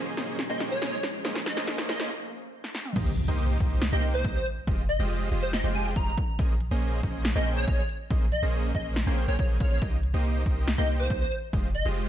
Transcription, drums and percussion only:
0.17 snare medium
0.17 closed hi-hat medium
0.39 snare medium
0.39 closed hi-hat medium
0.60 snare medium
0.60 closed hi-hat medium
0.82 snare medium
0.82 closed hi-hat medium
1.03 snare medium
1.03 closed hi-hat medium
1.25 snare medium
1.25 closed hi-hat medium
1.35 snare medium
1.46 snare loud
1.46 closed hi-hat medium
1.57 snare medium
1.68 snare loud
1.68 closed hi-hat medium
1.78 snare medium
1.89 snare loud
1.89 closed hi-hat medium
2.00 snare medium
2.64 snare medium
2.75 snare medium
2.85 mid tom medium
2.96 kick loud
2.96 closed hi-hat medium
2.96 crash loud
3.17 closed hi-hat medium
3.28 closed hi-hat medium
3.33 closed hi-hat medium
3.39 closed hi-hat medium
3.60 kick medium
3.60 closed hi-hat medium
3.82 snare loud
3.82 closed hi-hat medium
4.03 closed hi-hat medium
4.14 closed hi-hat medium
4.19 closed hi-hat medium
4.25 kick loud
4.25 closed hi-hat medium
4.46 closed hi-hat medium
4.67 kick loud
4.67 closed hi-hat medium
4.89 closed hi-hat medium
5.00 closed hi-hat soft
5.05 closed hi-hat medium
5.10 closed hi-hat medium
5.32 closed hi-hat medium
5.53 snare loud
5.53 closed hi-hat medium
5.75 closed hi-hat medium
5.85 closed hi-hat soft
5.91 closed hi-hat medium
5.96 kick loud
5.96 closed hi-hat medium
6.18 kick loud
6.18 closed hi-hat medium
6.39 kick loud
6.39 closed hi-hat medium
6.61 closed hi-hat medium
6.71 closed hi-hat soft
6.77 closed hi-hat medium
6.82 closed hi-hat medium
7.03 kick medium
7.03 closed hi-hat medium
7.25 snare loud
7.25 closed hi-hat medium
7.46 closed hi-hat medium
7.57 closed hi-hat soft
7.62 closed hi-hat medium
7.68 kick loud
7.68 closed hi-hat medium
7.89 closed hi-hat medium
8.10 kick loud
8.10 closed hi-hat medium
8.32 closed hi-hat medium
8.43 closed hi-hat soft
8.48 closed hi-hat medium
8.54 closed hi-hat medium
8.75 kick medium
8.75 closed hi-hat medium
8.96 snare loud
8.96 closed hi-hat medium
9.18 closed hi-hat medium
9.28 closed hi-hat soft
9.34 closed hi-hat medium
9.39 kick loud
9.39 closed hi-hat medium
9.60 kick loud
9.60 closed hi-hat medium
9.82 kick loud
9.82 closed hi-hat medium
10.03 closed hi-hat medium
10.14 closed hi-hat soft
10.19 closed hi-hat medium
10.25 closed hi-hat medium
10.46 kick medium
10.46 closed hi-hat medium
10.68 snare loud
10.68 closed hi-hat medium
10.89 closed hi-hat medium
11.00 closed hi-hat soft
11.05 closed hi-hat medium
11.10 kick loud
11.10 closed hi-hat medium
11.32 closed hi-hat medium
11.53 kick loud
11.53 closed hi-hat medium
11.75 closed hi-hat medium
11.86 closed hi-hat soft
11.91 closed hi-hat medium
11.96 closed hi-hat medium

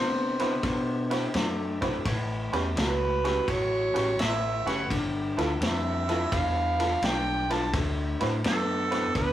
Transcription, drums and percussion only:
0.40 snare soft
0.40 ride medium
0.63 kick loud
0.63 snare soft
0.63 ride medium
1.11 snare soft
1.11 ride medium
1.34 snare loud
1.34 ride medium
1.82 kick medium
1.82 snare soft
1.82 ride medium
2.05 kick loud
2.05 snare soft
2.05 ride medium
2.53 snare soft
2.53 ride medium
2.77 snare loud
2.77 ride medium
3.25 snare soft
3.25 ride medium
3.48 kick loud
3.48 snare soft
3.48 ride medium
3.96 snare soft
3.96 ride medium
4.19 snare medium
4.19 ride medium
4.67 snare soft
4.67 ride medium
4.90 kick loud
4.90 snare soft
4.90 ride medium
5.38 snare soft
5.38 ride medium
5.62 snare loud
5.62 ride medium
6.09 snare soft
6.09 ride medium
6.32 kick loud
6.32 snare soft
6.32 ride medium
6.80 snare soft
6.80 ride medium
7.02 snare medium
7.02 ride medium
7.51 snare soft
7.51 ride medium
7.73 kick loud
7.73 snare soft
7.73 ride medium
8.21 snare soft
8.21 ride medium
8.44 snare loud
8.44 ride medium
8.92 snare soft
8.92 ride medium
9.15 kick loud
9.15 snare soft
9.15 ride medium

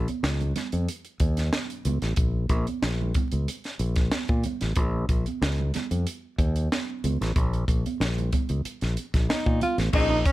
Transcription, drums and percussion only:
0.08 closed hi-hat soft
0.08 high conga medium
0.24 snare loud
0.40 closed hi-hat soft
0.40 low conga medium
0.56 snare soft
0.56 closed hi-hat medium
0.56 muted conga soft
0.56 high conga medium
0.56 low conga medium
0.72 closed hi-hat soft
0.89 closed hi-hat medium
0.89 muted conga soft
1.05 closed hi-hat soft
1.20 kick medium
1.20 closed hi-hat medium
1.20 muted conga soft
1.37 snare soft
1.37 closed hi-hat soft
1.53 snare medium
1.53 high conga medium
1.70 closed hi-hat soft
1.85 closed hi-hat medium
1.85 high conga medium
1.85 low conga medium
2.02 snare soft
2.02 closed hi-hat soft
2.16 kick loud
2.16 closed hi-hat medium
2.49 kick medium
2.49 closed hi-hat medium
2.49 muted conga soft
2.67 closed hi-hat soft
2.67 high conga medium
2.83 snare loud
3.02 low conga medium
3.14 kick medium
3.14 closed hi-hat medium
3.14 muted conga soft
3.14 high conga medium
3.14 low conga medium
3.31 closed hi-hat soft
3.48 closed hi-hat medium
3.48 muted conga soft
3.64 snare soft
3.64 closed hi-hat soft
3.79 closed hi-hat medium
3.96 kick loud
3.96 snare soft
3.96 closed hi-hat medium
4.12 snare loud
4.12 muted conga soft
4.12 high conga medium
4.28 kick loud
4.28 closed hi-hat soft
4.44 closed hi-hat medium
4.44 high conga medium
4.44 low conga medium
4.61 snare soft
4.61 closed hi-hat soft
4.76 kick loud
4.76 closed hi-hat medium
5.09 kick medium
5.09 closed hi-hat medium
5.26 closed hi-hat soft
5.26 high conga medium
5.42 snare loud
5.60 low conga medium
5.74 snare soft
5.74 closed hi-hat medium
5.74 muted conga soft
5.74 high conga medium
5.74 low conga medium
5.91 closed hi-hat soft
6.07 closed hi-hat medium
6.39 kick medium
6.39 closed hi-hat medium
6.39 muted conga soft
6.56 closed hi-hat soft
6.72 snare medium
6.72 muted conga soft
6.72 high conga medium
7.04 closed hi-hat medium
7.04 muted conga soft
7.04 high conga medium
7.04 low conga medium
7.22 snare soft
7.22 closed hi-hat soft
7.36 kick loud
7.36 closed hi-hat medium
7.53 closed hi-hat soft
7.68 kick medium
7.68 closed hi-hat medium
7.68 muted conga soft
7.86 closed hi-hat soft
7.86 high conga medium
8.01 snare medium
8.01 muted conga soft
8.18 closed hi-hat soft
8.18 low conga medium
8.33 kick medium
8.33 closed hi-hat medium
8.33 high conga medium
8.33 low conga medium
8.49 closed hi-hat soft
8.65 closed hi-hat medium
8.81 snare soft
8.81 closed hi-hat soft
8.97 closed hi-hat medium
8.97 muted conga soft
9.14 kick medium
9.14 snare soft
9.14 closed hi-hat medium
9.30 snare loud
9.30 muted conga soft
9.30 high conga medium
9.46 kick medium
9.61 closed hi-hat medium
9.61 muted conga soft
9.61 high conga medium
9.61 low conga medium
9.78 snare soft
9.78 closed hi-hat soft
9.93 kick loud
9.93 crash loud
10.26 kick loud
10.26 closed hi-hat medium

